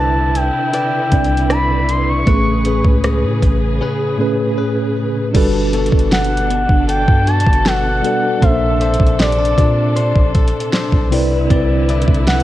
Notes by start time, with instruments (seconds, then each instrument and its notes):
Already playing: 808-style bass C2, tine electric piano C3 C4 D4 E4 B4, string section D3 E4 B4, clean electric guitar C4 E4 B4 D5, soft synth lead A5
0.35 soft synth lead G5, closed hi-hat
0.73 clean electric guitar E4 B4 D5, closed hi-hat
1.10 808-style bass C2, tine electric piano C3 C4 D4 E4 D5, kick, closed hi-hat
1.24 closed hi-hat
1.37 closed hi-hat
1.50 clean electric guitar D5, soft synth lead B5, cross-stick, closed hi-hat
1.89 soft synth lead C6, closed hi-hat
2.09 soft synth lead C#6
2.25 808-style bass A1, tine electric piano A2 A3 B3 G#4 B4, string section C#3 G#4, clean electric guitar A3 B4, kick, closed hi-hat
2.34 tine electric piano C#4
2.65 clean electric guitar C#4 G#4 B4, closed hi-hat
2.85 808-style bass C#2, kick
3.04 clean electric guitar G#4, cross-stick, closed hi-hat
3.24 808-style bass A2
3.42 808-style bass A1, kick, closed hi-hat
3.81 clean electric guitar C#4 G#4 B4
4.18 tine electric piano A2 A3 C#4 G#4 B4
4.58 clean electric guitar B4
5.33 808-style bass G1, string section B2 D4 A4, tine electric piano G3 D4 F#4 A4 B4, clean electric guitar G3 A4, kick, closed hi-hat, crash
5.73 clean electric guitar B3 F#4 A4, closed hi-hat
5.86 closed hi-hat
5.92 808-style bass G1, kick
5.99 closed hi-hat
6.12 soft synth lead F#5, snare, closed hi-hat
6.24 closed hi-hat
6.37 closed hi-hat
6.50 clean electric guitar B3, closed hi-hat
6.69 808-style bass G1, kick
6.89 clean electric guitar A4, soft synth lead G5, closed hi-hat
7.08 808-style bass G2, kick
7.27 clean electric guitar F#4, soft synth lead A5, closed hi-hat
7.40 closed hi-hat
7.46 808-style bass G1, kick
7.53 closed hi-hat
7.66 clean electric guitar B3 F#4 A4, soft synth lead F#5, snare
8.02 tine electric piano G3 D4 F#4 A4 D5, clean electric guitar B3, closed hi-hat
8.40 808-style bass A#1, tine electric piano A#2 A#3 C#4 A4 C5, string section C3 D4, clean electric guitar A#3 C5, soft synth lead E5, kick, closed hi-hat
8.49 tine electric piano D4
8.81 clean electric guitar D4 A4 C5, closed hi-hat
8.94 closed hi-hat
9.00 808-style bass A#1, kick
9.07 closed hi-hat
9.19 clean electric guitar G4, soft synth lead D5, snare, closed hi-hat
9.32 closed hi-hat
9.39 clean electric guitar A4
9.45 closed hi-hat
9.58 808-style bass A#2, clean electric guitar D4, kick, closed hi-hat
9.96 clean electric guitar C5, closed hi-hat
10.16 808-style bass A#1, kick
10.35 clean electric guitar A4, kick, closed hi-hat
10.48 closed hi-hat
10.60 closed hi-hat
10.73 clean electric guitar D4 A4 C5, snare
10.92 808-style bass C2, kick
11.10 tine electric piano C3 C4 E4 B4 D5, string section D3 E4 B4, clean electric guitar C4, open hi-hat
11.50 808-style bass C2, clean electric guitar C4 D5, kick, closed hi-hat
11.89 clean electric guitar E4 B4 D5, closed hi-hat
12.02 closed hi-hat
12.08 808-style bass C2, kick
12.14 closed hi-hat
12.27 clean electric guitar B4, soft synth lead F#5, snare, closed hi-hat
12.40 closed hi-hat